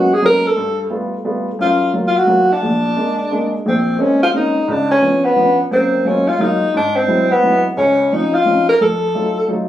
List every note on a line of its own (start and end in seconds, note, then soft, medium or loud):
0.00 0.15 F#4 medium
0.14 0.24 G#4 loud
0.22 0.44 F#3 medium
0.22 0.44 G#3 soft
0.22 0.45 A#3 medium
0.22 0.44 B3 soft
0.22 0.45 C#4 medium
0.22 0.48 A#4 loud
0.47 0.79 A4 medium
0.56 0.86 G2 medium
0.90 1.13 G3 medium
0.90 1.13 A3 soft
0.90 1.13 B3 soft
0.90 1.13 F4 medium
1.24 1.47 G3 medium
1.24 1.47 A3 medium
1.24 1.47 B3 medium
1.24 1.48 F4 medium
1.59 1.88 F#2 medium
1.59 1.92 F4 medium
1.93 2.16 F#3 medium
1.93 2.16 A#3 soft
1.93 2.16 F4 medium
2.07 2.19 F4 medium
2.17 2.54 F#4 loud
2.27 2.50 F#3 medium
2.27 2.50 A#3 medium
2.27 2.50 F4 medium
2.52 3.53 D4 medium
2.62 2.92 A#1 medium
2.96 3.19 G#3 medium
2.96 3.19 A#3 soft
2.96 3.19 D4 medium
3.31 3.53 G#3 medium
3.31 3.53 A#3 medium
3.31 3.54 D4 medium
3.66 3.95 A#1 medium
3.66 4.03 C4 medium
3.99 4.21 G#3 soft
3.99 4.21 A#3 soft
3.99 4.22 C4 soft
3.99 4.22 C#4 medium
3.99 4.21 C#4 medium
4.23 4.28 F4 medium
4.33 4.56 G#3 medium
4.33 4.56 A#3 soft
4.33 4.56 C4 medium
4.33 4.56 C#4 medium
4.33 4.72 D#4 medium
4.68 4.97 C#2 medium
4.68 4.90 D4 medium
4.91 5.26 C#4 medium
5.01 5.24 F3 soft
5.01 5.24 B3 soft
5.01 5.25 C#4 soft
5.01 5.25 D4 medium
5.25 5.58 B3 medium
5.36 5.59 F3 medium
5.36 5.59 B3 soft
5.36 5.59 C#4 medium
5.36 5.59 D4 medium
5.71 6.00 F#2 medium
5.71 6.01 A#3 medium
5.71 6.08 C4 medium
6.05 6.27 F#3 medium
6.05 6.28 G#3 soft
6.05 6.28 A#3 soft
6.05 6.30 C#4 medium
6.05 6.28 F4 medium
6.28 6.43 F4 medium
6.39 6.62 F#3 medium
6.39 6.62 G#3 soft
6.39 6.62 A#3 soft
6.39 6.75 D#4 medium
6.39 6.62 F4 medium
6.74 7.03 G#2 medium
6.74 6.98 D4 medium
6.96 7.33 C4 medium
7.08 7.31 F#3 soft
7.08 7.31 G#3 soft
7.08 7.31 C4 soft
7.08 7.31 E4 medium
7.31 7.65 B3 medium
7.43 7.65 F#3 soft
7.43 7.65 G#3 soft
7.43 7.65 C4 soft
7.43 7.66 E4 medium
7.77 8.06 C#2 medium
7.77 8.15 C#4 medium
8.13 8.34 F3 soft
8.13 8.35 C4 soft
8.13 8.35 C#4 soft
8.13 8.35 D#4 medium
8.13 8.36 D#4 medium
8.35 8.68 F4 loud
8.45 8.68 F3 medium
8.45 8.68 C4 soft
8.45 8.68 C#4 soft
8.45 8.69 D#4 medium
8.69 8.80 A#4 medium
8.81 9.10 F2 medium
8.81 9.46 A4 medium
9.15 9.37 F#3 medium
9.15 9.37 A3 soft
9.15 9.37 D#4 soft
9.15 9.37 F4 medium
9.48 9.69 F#3 medium
9.48 9.69 A3 soft
9.48 9.69 D#4 medium
9.48 9.69 F4 medium